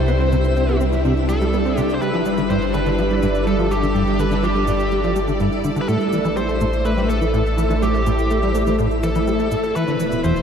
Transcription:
Already playing: sub bass C2, string machine C3 G3 D4 E4, synth texture E4 E5, lead electric guitar C5
0.08 analog synth bass B3, shaker
0.20 analog synth bass C4, percussion blips, shaker
0.32 analog synth bass C3, shaker
0.44 shaker
0.56 analog synth bass C4, shaker
0.69 analog synth bass B3, shaker
0.81 analog synth bass C4, shaker
0.93 analog synth bass G3, shaker
1.05 analog synth bass C3, percussion blips, shaker
1.17 shaker
1.29 analog synth bass G3, lead electric guitar A4, shaker
1.41 analog synth bass G3, shaker
1.53 analog synth bass B3, shaker
1.65 analog synth bass C4, shaker
1.77 analog synth bass C3, lead electric guitar G4, shaker
1.89 percussion blips, shaker
1.94 lead electric guitar C5
2.01 sub bass G1, analog synth bass G3, lead electric guitar B4, shaker
2.14 analog synth bass F3, shaker
2.25 analog synth bass G3, shaker
2.38 analog synth bass D3, shaker
2.50 analog synth bass G2, lead electric guitar C5, shaker
2.57 string machine D5
2.62 shaker
2.74 analog synth bass D3, lead electric guitar B4, percussion blips, shaker
2.86 analog synth bass D3, shaker
2.98 analog synth bass F3, shaker
3.10 analog synth bass G3, shaker
3.19 analog synth bass G2, string machine A4, shaker
3.35 shaker
3.47 analog synth bass G3, lead electric guitar A4, shaker
3.59 analog synth bass F3, percussion blips, shaker
3.71 analog synth bass G3, lead electric guitar G4, shaker
3.83 analog synth bass D3, shaker
3.95 analog synth bass G2, shaker
4.07 shaker
4.19 analog synth bass D3, lead electric guitar B4, shaker
4.31 analog synth bass D3, shaker
4.43 analog synth bass F3, lead electric guitar G4, percussion blips, shaker
4.55 analog synth bass G3, shaker
4.67 analog synth bass G2, shaker
4.80 shaker
4.91 analog synth bass G3, shaker
5.04 analog synth bass F3, shaker
5.16 analog synth bass G3, shaker
5.28 analog synth bass D3, percussion blips, shaker
5.40 analog synth bass G2, shaker
5.52 shaker
5.64 analog synth bass D3, shaker
5.76 analog synth bass D3, shaker
5.81 lead electric guitar B4
5.88 sub bass A1, analog synth bass A2, string machine A3, synth texture E4 E5, lead electric guitar A4, shaker
6.00 shaker
6.13 analog synth bass E3, string machine E4, shaker
6.25 analog synth bass E3, percussion blips, shaker
6.37 analog synth bass G3, lead electric guitar C5, shaker
6.49 analog synth bass A3, shaker
6.61 analog synth bass A2, shaker
6.73 shaker
6.85 analog synth bass A3, lead electric guitar B4, shaker
6.97 analog synth bass G3, shaker
7.09 analog synth bass A3, lead electric guitar A4, percussion blips, shaker
7.21 analog synth bass E3, shaker
7.34 analog synth bass A2, string machine C5, shaker
7.46 shaker
7.58 analog synth bass E3, shaker
7.70 analog synth bass E3, shaker
7.82 analog synth bass G3, lead electric guitar G4, shaker
7.94 analog synth bass A3, percussion blips, shaker
8.06 analog synth bass A2, shaker
8.19 shaker
8.30 analog synth bass A3, shaker
8.43 analog synth bass G3, shaker
8.55 analog synth bass A3, shaker
8.67 analog synth bass E3, shaker
8.79 analog synth bass A2, percussion blips, shaker
8.91 shaker
9.03 analog synth bass E3, lead electric guitar A4, shaker
9.15 analog synth bass E3, shaker
9.27 analog synth bass G3, shaker
9.39 analog synth bass A3, shaker
9.51 analog synth bass A2, shaker
9.63 percussion blips, shaker
9.75 sub bass E1, string machine E3, analog synth bass E3, lead electric guitar B4, shaker
9.86 string machine B2, analog synth bass D3, shaker
10.00 analog synth bass E3, shaker
10.12 analog synth bass B2, shaker
10.24 analog synth bass E2, lead electric guitar C5, shaker
10.36 shaker

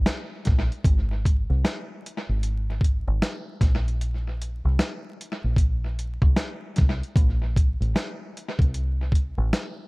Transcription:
0.06 snare, closed hi-hat
0.45 fingered electric bass A#1, kick, snare, closed hi-hat
0.72 closed hi-hat
0.84 fingered electric bass G#1, kick, closed hi-hat
1.25 kick, closed hi-hat
1.50 fingered electric bass C2
1.65 snare, closed hi-hat
2.06 closed hi-hat
2.29 fingered electric bass G#1
2.43 closed hi-hat
2.81 kick, closed hi-hat
3.07 fingered electric bass G#1
3.22 snare, closed hi-hat
3.61 fingered electric bass A#1, kick, snare, closed hi-hat
3.88 closed hi-hat
4.01 closed hi-hat
4.42 closed hi-hat
4.65 fingered electric bass C2
4.79 snare, closed hi-hat
5.21 closed hi-hat
5.44 fingered electric bass A#1
5.56 kick, closed hi-hat
5.99 closed hi-hat
6.22 fingered electric bass C2, kick
6.36 snare, closed hi-hat
6.76 fingered electric bass C2, kick, snare, closed hi-hat
7.03 closed hi-hat
7.16 fingered electric bass A#1, kick, closed hi-hat
7.56 kick, closed hi-hat
7.81 fingered electric bass A1, closed hi-hat
7.96 snare, closed hi-hat
8.37 closed hi-hat
8.59 fingered electric bass C2, kick, closed hi-hat
8.74 closed hi-hat
9.12 kick, closed hi-hat
9.38 fingered electric bass A1
9.53 snare, closed hi-hat

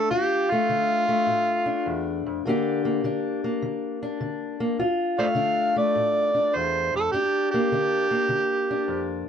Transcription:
Already playing: steel-string acoustic guitar D4
0.11 steel-string acoustic guitar D2 F4, harmonica G4
0.50 steel-string acoustic guitar A3, harmonica F4
0.69 steel-string acoustic guitar D3 D4
1.09 steel-string acoustic guitar A3
1.27 steel-string acoustic guitar A2
1.66 steel-string acoustic guitar D4
1.86 steel-string acoustic guitar E2
2.26 steel-string acoustic guitar F2
2.45 steel-string acoustic guitar G2 D3 A#3 D4 G4
2.85 steel-string acoustic guitar A#3
3.04 steel-string acoustic guitar D3 D4
3.44 steel-string acoustic guitar A#3
3.62 steel-string acoustic guitar D3
4.03 steel-string acoustic guitar D4
4.21 steel-string acoustic guitar D3
4.60 steel-string acoustic guitar A#3
4.79 steel-string acoustic guitar D2 F4
5.19 steel-string acoustic guitar A3, harmonica C5 D5 F5
5.35 steel-string acoustic guitar D3 D4
5.76 steel-string acoustic guitar A3, harmonica D5
5.96 steel-string acoustic guitar A2
6.35 steel-string acoustic guitar D4
6.56 steel-string acoustic guitar E2, harmonica C5
6.94 steel-string acoustic guitar F2, harmonica A4
7.12 steel-string acoustic guitar G2 D4, harmonica G4
7.51 steel-string acoustic guitar A#3, harmonica G4
7.72 steel-string acoustic guitar D3 D4
8.11 steel-string acoustic guitar A#3
8.29 steel-string acoustic guitar D3
8.71 steel-string acoustic guitar D4
8.88 steel-string acoustic guitar F2

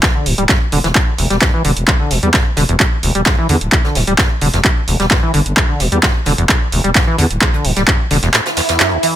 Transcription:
0.03 acid bass E2, kick, snare, clap, closed hi-hat
0.15 acid bass D3
0.26 fm bass D1, acid bass B2, closed hi-hat, open hi-hat
0.38 fm bass D1, acid bass G3, closed hi-hat
0.49 acid bass G2, kick, snare, clap, closed hi-hat
0.72 fm bass E1, acid bass D3, closed hi-hat, open hi-hat
0.84 fm bass E1, acid bass E3, snare, closed hi-hat
0.95 acid bass A2, kick, clap, closed hi-hat
1.18 fm bass E1, acid bass D2, closed hi-hat, open hi-hat
1.30 fm bass E1, acid bass G3, snare, closed hi-hat
1.41 acid bass G2, kick, snare, clap, closed hi-hat
1.54 acid bass E3
1.65 fm bass E1, acid bass D3, closed hi-hat, open hi-hat
1.77 fm bass E1, closed hi-hat
1.88 acid bass E2, kick, clap, closed hi-hat
2.00 acid bass D3
2.11 fm bass E1, acid bass B2, snare, closed hi-hat, open hi-hat
2.23 fm bass E2, acid bass G3, closed hi-hat
2.34 acid bass G2, kick, snare, clap, closed hi-hat
2.56 fm bass E1, acid bass D3, snare, closed hi-hat, open hi-hat
2.69 fm bass E1, acid bass E2, closed hi-hat
2.80 acid bass A2, kick, clap, closed hi-hat
3.03 fm bass E1, acid bass D2, closed hi-hat, open hi-hat
3.15 fm bass E1, acid bass G3, closed hi-hat
3.25 acid bass G2, kick, snare, clap, closed hi-hat
3.38 acid bass E3
3.49 fm bass E2, acid bass D3, closed hi-hat, open hi-hat
3.61 fm bass D1, closed hi-hat
3.72 acid bass E2, kick, clap, closed hi-hat
3.84 acid bass D3, snare
3.95 fm bass D1, acid bass B2, snare, closed hi-hat, open hi-hat
4.07 fm bass D1, acid bass G3, closed hi-hat
4.18 acid bass G2, kick, snare, clap, closed hi-hat
4.41 fm bass E1, acid bass D3, closed hi-hat, open hi-hat
4.53 fm bass E1, acid bass E2, snare, closed hi-hat
4.65 acid bass A2, kick, clap, closed hi-hat
4.88 fm bass E1, acid bass D2, closed hi-hat, open hi-hat
5.00 fm bass E1, acid bass G3, snare, closed hi-hat
5.10 acid bass G2, kick, snare, clap, closed hi-hat
5.23 acid bass E3
5.34 fm bass G1, acid bass D3, closed hi-hat, open hi-hat
5.46 fm bass G1, closed hi-hat
5.57 acid bass E2, kick, clap, closed hi-hat
5.69 acid bass D3
5.80 fm bass E1, acid bass B2, snare, closed hi-hat, open hi-hat
5.92 fm bass E2, acid bass G3, closed hi-hat
6.03 acid bass G2, kick, snare, clap, closed hi-hat
6.26 fm bass E1, acid bass D3, snare, closed hi-hat, open hi-hat
6.38 fm bass E1, acid bass E2, closed hi-hat
6.49 acid bass A2, kick, clap, closed hi-hat
6.72 fm bass E1, acid bass D2, closed hi-hat, open hi-hat
6.84 fm bass E1, acid bass G3, closed hi-hat
6.95 acid bass G2, kick, snare, clap, closed hi-hat
7.07 acid bass E3
7.18 fm bass E2, acid bass D3, closed hi-hat, open hi-hat
7.31 fm bass D1, closed hi-hat
7.41 acid bass E2, kick, snare, clap, closed hi-hat
7.53 acid bass D3, closed hi-hat
7.65 fm bass D1, acid bass B2, open hi-hat
7.76 fm bass D1, acid bass G3, snare, closed hi-hat
7.87 acid bass G2, kick, clap, closed hi-hat
8.11 fm bass E1, acid bass D3, snare, closed hi-hat, open hi-hat
8.23 fm bass E1, acid bass E2, snare, closed hi-hat
8.34 acid bass A2, snare, clap, closed hi-hat, swell
8.46 snare, closed hi-hat
8.57 acid bass E2, snare, closed hi-hat, open hi-hat
8.69 acid bass E2, snare, closed hi-hat
8.80 acid bass F#2, snare, clap, closed hi-hat
8.92 acid bass D2
9.03 acid bass E3, closed hi-hat, open hi-hat

